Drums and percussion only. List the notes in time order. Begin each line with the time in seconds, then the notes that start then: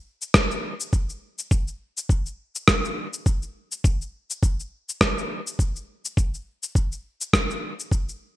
0.22 cabasa
0.34 kick, cross-stick, cabasa
0.51 cabasa
0.80 cabasa
0.93 kick, cabasa
1.10 cabasa
1.39 cabasa
1.51 kick, cabasa
1.68 cabasa
1.97 cabasa
2.09 kick, cabasa
2.26 cabasa
2.55 cabasa
2.68 kick, cross-stick, cabasa
2.85 cabasa
3.14 cabasa
3.26 kick, cabasa
3.43 cabasa
3.72 cabasa
3.84 kick, cabasa
4.02 cabasa
4.30 cabasa
4.43 kick, cabasa
4.60 cabasa
4.89 cabasa
5.01 kick, cross-stick, cabasa
5.18 cabasa
5.47 cabasa
5.59 kick, cabasa
5.76 cabasa
6.05 cabasa
6.17 kick, cabasa
6.34 cabasa
6.63 cabasa
6.75 kick, cabasa
6.92 cabasa
7.21 cabasa
7.33 kick, cross-stick, cabasa
7.51 cabasa
7.80 cabasa
7.92 kick, cabasa
8.09 cabasa